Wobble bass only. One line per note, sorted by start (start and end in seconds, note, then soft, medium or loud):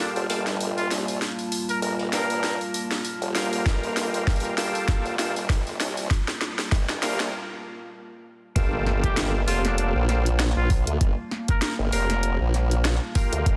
0.16 0.27 F1 medium
0.29 0.89 G1 loud
0.91 1.19 C2 loud
1.82 2.11 G1 loud
2.13 2.58 G2 medium
3.22 3.64 F1 loud
3.66 4.25 G1 loud
4.27 4.72 G1 loud
5.05 5.17 F1 loud
5.19 5.78 G1 loud
5.80 6.09 C2 loud
6.71 7.00 G1 loud
7.02 7.33 C2 medium
8.56 9.46 G1 loud
9.48 9.93 F1 loud
9.95 10.54 A#1 loud
10.57 10.85 A#1 loud
10.87 10.98 D2 loud
11.01 11.15 G1 loud
11.79 11.91 G1 loud
11.93 12.38 F1 loud
12.41 12.99 A#1 loud
13.33 13.44 D2 loud
13.46 13.56 G1 loud